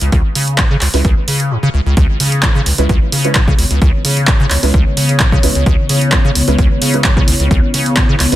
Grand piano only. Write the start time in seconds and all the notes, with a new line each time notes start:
0.94 G#3 C#4 E4 B4
2.78 G#3 C#4 E4 B4
3.25 G#3 C#4 E4 B4
4.63 G#3 C#4 E4 B4
5.43 G#3 C#4 E4 B4
6.48 G#3 C#4 E4 B4
6.94 G#3 C#4 E4 B4
8.32 G#3 C#4 E4 B4